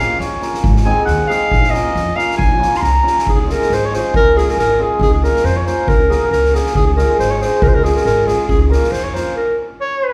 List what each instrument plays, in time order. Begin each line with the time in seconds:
Already playing: hammered dulcimer A#3 C#4, clarinet F5
0.00 hammered dulcimer F4 A#4
0.20 upright bass F2, clarinet C#5, snare
0.41 hammered dulcimer A#3 C#4 F4 A#4, snare
0.54 snare
0.64 upright bass G#1, kick
0.76 snare
0.84 hammered dulcimer G#3 C4 D#4 G#4, clarinet G#5
1.05 upright bass D#2, clarinet F#5, snare
1.27 hammered dulcimer G#3 C4 D#4 G#4, clarinet F5, snare
1.51 upright bass A#1, kick
1.64 snare
1.70 hammered dulcimer A#3 C#4 F4 A#4, clarinet D#5, snare
1.95 upright bass F2, snare
2.15 hammered dulcimer A#3 C#4 F4 A#4, clarinet F5, snare
2.31 snare
2.37 upright bass A#1, clarinet G#5, kick
2.59 hammered dulcimer A#3 C#4 F4 A#4, snare
2.74 clarinet C6, snare
2.82 upright bass C2, clarinet A#5, snare
3.03 hammered dulcimer A#3 C#4 F4 A#4
3.07 snare
3.18 snare
3.26 upright bass C#2, clarinet G#4, kick
3.34 clarinet G#4
3.41 clarinet G#4
3.46 hammered dulcimer G#3 C#4 F4 G#4, snare
3.51 clarinet A#4
3.62 snare
3.70 upright bass G#1, clarinet C5, snare
3.86 clarinet C#5
3.90 hammered dulcimer G#3 C#4 F4 G#4, snare
3.95 clarinet C5
4.14 upright bass C#2, clarinet A#4, kick
4.35 hammered dulcimer G#3 C#4 F4 G#4, clarinet G#4, snare
4.48 clarinet A#4, snare
4.57 upright bass G#1, clarinet A#4, snare
4.79 hammered dulcimer G#3 C#4 F4 G#4, clarinet G#4
4.99 upright bass C#2, clarinet G#4, kick
5.14 clarinet G#4
5.22 hammered dulcimer A#3 C#4 F4 A#4, clarinet A#4, snare
5.36 snare
5.44 upright bass F2, clarinet C5, snare
5.57 clarinet C#5
5.65 hammered dulcimer A#3 C#4 F4 A#4, clarinet C5, snare
5.87 upright bass C#2, clarinet A#4, kick
6.09 hammered dulcimer A#3 C#4 F#4 A#4, clarinet G#4 A#4, snare
6.17 clarinet G#4
6.22 clarinet A#4
6.31 upright bass C#2, clarinet A#4, snare
6.44 snare
6.53 hammered dulcimer A#3 C#4 F#4 A#4, clarinet G#4, snare
6.66 snare
6.75 upright bass C#2, clarinet G#4, kick
6.87 clarinet G#4
6.96 hammered dulcimer G#3 C#4 F4 G#4, clarinet A#4, snare
7.19 upright bass G#1, clarinet C5, snare
7.31 clarinet C#5
7.40 hammered dulcimer G#3 C#4 F4 G#4, clarinet C5, snare
7.62 upright bass C#2, clarinet A#4, kick
7.68 clarinet C5
7.75 clarinet A#4
7.83 hammered dulcimer G#3 C#4 F4 G#4, clarinet G#4, snare
7.95 clarinet A#4, snare
8.05 upright bass G#1, clarinet A#4, snare
8.26 hammered dulcimer G#3 C#4 F4 G#4, clarinet G#4, snare
8.48 upright bass C#2, clarinet G#4, kick
8.61 clarinet G#4
8.69 hammered dulcimer A#3 C#4 F4 A#4, clarinet A#4, snare
8.84 snare
8.92 upright bass F2, clarinet C5, snare
9.04 clarinet C#5
9.13 hammered dulcimer A#3 C#4 F4 A#4, clarinet C5, snare
9.37 clarinet A#4
9.81 clarinet C#5